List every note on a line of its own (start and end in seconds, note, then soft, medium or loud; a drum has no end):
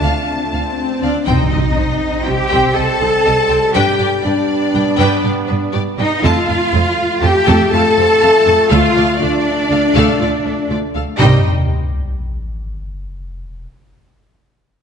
0.00 0.11 D2 medium
0.00 0.98 F3 medium
0.00 1.02 A3 medium
0.00 0.74 D4 medium
0.00 0.78 D4 medium
0.00 0.84 D4 medium
0.00 0.84 F4 medium
0.00 0.26 F5 medium
0.00 1.02 A5 medium
0.00 swell medium
0.53 0.61 D2 medium
0.53 0.61 F5 medium
1.01 1.10 D2 medium
1.01 1.25 D4 medium
1.01 1.26 D5 medium
1.01 1.11 F5 medium
1.26 1.36 C2 medium
1.26 6.18 G3 medium
1.26 1.50 C4 medium
1.26 3.71 C4 medium
1.26 2.24 D#4 loud
1.26 2.27 D#4 medium
1.26 1.50 C5 medium
1.26 2.25 D#5 medium
1.26 1.50 G5 medium
1.26 impact medium
1.52 1.60 C2 medium
1.52 1.60 C4 medium
1.52 1.60 G4 medium
1.52 1.60 D#5 medium
1.76 1.85 C2 medium
1.76 1.84 C4 medium
1.76 1.84 D#4 medium
1.76 1.85 C5 medium
2.25 2.35 C2 medium
2.25 2.34 C4 medium
2.25 2.75 G4 medium
2.25 2.76 G4 loud
2.25 2.34 C5 medium
2.25 2.33 G5 medium
2.25 2.76 G5 medium
2.50 2.59 C2 loud
2.50 2.74 C4 medium
2.50 2.74 C5 medium
2.50 2.73 G5 medium
2.75 2.84 C2 medium
2.75 2.84 C4 medium
2.75 2.84 G4 medium
2.75 3.75 A4 loud
2.75 2.83 D#5 medium
2.75 3.75 A5 loud
3.00 3.09 C2 medium
3.00 3.08 C4 medium
3.00 3.08 D#4 medium
3.00 3.08 C5 medium
3.25 3.33 C2 medium
3.25 3.33 C4 medium
3.25 3.33 G4 medium
3.25 3.34 D#5 medium
3.49 3.58 C2 medium
3.49 3.57 C4 medium
3.49 3.57 C5 medium
3.49 3.57 G5 medium
3.74 3.83 G2 medium
3.74 6.19 B3 medium
3.74 3.98 D4 loud
3.74 4.24 G4 medium
3.74 3.97 B4 medium
3.74 4.24 G5 loud
3.74 3.98 G5 loud
3.99 4.07 G2 medium
3.99 4.07 D4 medium
3.99 4.07 G4 medium
3.99 4.08 D5 medium
4.24 4.32 G2 medium
4.24 5.70 D4 medium
4.24 4.33 D4 medium
4.24 5.74 D4 loud
4.24 4.33 B4 medium
4.24 5.73 D5 loud
4.74 4.82 G2 medium
4.74 4.82 D4 medium
4.74 4.82 B4 medium
4.74 4.82 G5 medium
4.98 5.06 G2 loud
4.98 5.22 D4 medium
4.98 5.22 B4 loud
4.98 5.22 G5 loud
5.23 5.31 G2 medium
5.23 5.32 D4 medium
5.23 5.32 G4 medium
5.23 5.32 D5 medium
5.48 5.57 G2 medium
5.48 5.57 D4 medium
5.48 5.56 B4 medium
5.72 5.81 G2 medium
5.72 5.80 D4 medium
5.72 5.81 G4 medium
5.72 5.82 D5 medium
5.98 6.06 G2 medium
5.98 6.06 D4 medium
5.98 6.21 D#4 loud
5.98 6.22 D#4 medium
5.98 6.06 B4 medium
5.98 6.22 D#5 loud
5.98 6.07 G5 medium
6.23 6.31 F2 loud
6.23 10.90 F3 loud
6.23 6.46 A3 medium
6.23 10.90 A3 medium
6.23 7.21 F4 loud
6.23 7.23 F4 loud
6.23 6.46 A4 loud
6.23 7.23 F5 loud
6.23 6.47 A5 medium
6.47 6.57 F2 medium
6.47 6.55 A3 medium
6.47 6.55 F4 medium
6.47 6.56 F5 medium
6.73 6.81 F2 medium
6.73 6.81 A3 medium
6.73 6.81 C4 medium
6.73 6.81 C5 medium
7.22 7.30 F2 medium
7.22 7.31 A3 medium
7.22 7.71 G4 loud
7.22 7.72 G4 loud
7.22 7.31 A4 medium
7.22 7.71 G5 loud
7.22 7.31 A5 medium
7.47 7.55 F2 loud
7.47 7.70 A3 loud
7.47 7.70 A4 loud
7.47 7.70 A5 medium
7.71 7.80 F2 medium
7.71 7.80 A3 medium
7.71 7.81 F4 medium
7.71 8.71 A4 loud
7.71 7.81 F5 medium
7.71 8.69 A5 loud
7.97 8.05 F2 medium
7.97 8.06 A3 medium
7.97 8.06 C4 medium
7.97 8.06 C5 medium
8.21 8.30 F2 medium
8.21 8.30 A3 medium
8.21 8.30 F4 medium
8.21 8.29 F5 medium
8.46 8.54 F2 medium
8.46 8.55 A3 medium
8.46 8.55 A4 medium
8.46 8.54 A5 medium
8.70 8.79 D2 loud
8.70 8.94 A3 loud
8.70 9.20 F4 loud
8.70 8.94 A4 loud
8.70 8.94 F5 loud
8.70 9.20 F5 loud
8.96 9.04 D2 medium
8.96 9.04 A3 medium
8.96 9.04 F4 medium
8.96 9.04 D5 medium
9.20 9.29 D2 medium
9.20 9.30 A3 medium
9.20 10.66 D4 loud
9.20 9.30 D4 medium
9.20 9.29 A4 medium
9.20 10.69 D5 loud
9.71 9.79 D2 medium
9.71 9.79 A3 medium
9.71 9.79 A4 medium
9.71 9.79 F5 medium
9.95 10.03 D2 loud
9.95 10.18 A3 loud
9.95 10.18 A4 loud
9.95 10.18 F5 medium
10.20 10.28 D2 medium
10.20 10.28 A3 medium
10.20 10.28 F4 medium
10.20 10.29 D5 medium
10.44 10.52 D2 medium
10.44 10.53 A3 medium
10.44 10.53 D4 medium
10.44 10.54 A4 medium
10.70 10.78 D2 medium
10.70 10.78 A3 medium
10.70 10.78 F4 medium
10.70 10.79 D5 medium
10.94 11.03 D2 medium
10.94 11.02 A3 medium
10.94 11.03 A4 medium
10.94 11.03 F5 medium
11.18 11.47 C2 loud
11.18 11.39 D#3 loud
11.18 11.39 G3 loud
11.18 11.40 G3 medium
11.18 11.46 D#4 loud
11.18 11.46 G4 medium
11.18 11.46 C5 medium
11.18 11.47 D#5 loud
11.18 11.47 G5 medium
11.18 sub drop medium